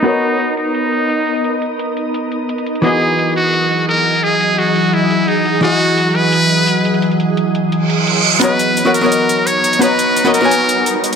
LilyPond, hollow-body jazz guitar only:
\new Staff \with { instrumentName = "Hollow-body jazz guitar" } { \time 4/4 \key b \major \tempo 4 = 172 <b fis' ais' cis'' dis''>1~ | <b fis' ais' cis'' dis''>1 | <e b fis' gis' dis''>1~ | <e b fis' gis' dis''>1 |
<e e' fis' gis' dis''>1~ | <e e' fis' gis' dis''>1 | <b fis' cis'' dis'' ais''>4~ <b fis' cis'' dis'' ais''>16 <b fis' ais' cis'' fis''>8 <b fis' ais' cis'' dis''>2~ <b fis' ais' cis'' dis''>16 | <b fis' cis'' dis'' ais''>4~ <b fis' cis'' dis'' ais''>16 <b fis' ais' cis'' dis''>8 <b fis' ais' cis'' gis''>2~ <b fis' ais' cis'' gis''>16 | }